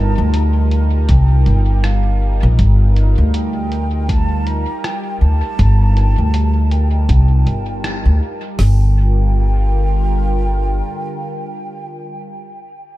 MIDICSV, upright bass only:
0, 0, Header, 1, 2, 480
1, 0, Start_track
1, 0, Key_signature, -2, "minor"
1, 0, Tempo, 750000
1, 1658, Time_signature, 4, 2, 24, 8
1, 8303, End_track
2, 0, Start_track
2, 0, Title_t, "Upright bass"
2, 0, Program_c, 0, 32
2, 0, Note_on_c, 0, 31, 105
2, 89, Note_off_c, 0, 31, 0
2, 115, Note_on_c, 0, 38, 93
2, 678, Note_off_c, 0, 38, 0
2, 698, Note_on_c, 0, 36, 94
2, 914, Note_off_c, 0, 36, 0
2, 936, Note_on_c, 0, 31, 76
2, 1551, Note_off_c, 0, 31, 0
2, 1555, Note_on_c, 0, 34, 103
2, 1645, Note_off_c, 0, 34, 0
2, 1656, Note_on_c, 0, 31, 104
2, 2009, Note_off_c, 0, 31, 0
2, 2035, Note_on_c, 0, 38, 94
2, 2969, Note_off_c, 0, 38, 0
2, 3335, Note_on_c, 0, 38, 82
2, 3458, Note_off_c, 0, 38, 0
2, 3578, Note_on_c, 0, 31, 105
2, 3930, Note_off_c, 0, 31, 0
2, 3956, Note_on_c, 0, 38, 91
2, 4518, Note_off_c, 0, 38, 0
2, 4537, Note_on_c, 0, 36, 92
2, 4753, Note_off_c, 0, 36, 0
2, 4775, Note_on_c, 0, 31, 80
2, 5150, Note_off_c, 0, 31, 0
2, 5154, Note_on_c, 0, 38, 91
2, 5245, Note_off_c, 0, 38, 0
2, 5496, Note_on_c, 0, 31, 99
2, 6911, Note_off_c, 0, 31, 0
2, 8303, End_track
0, 0, End_of_file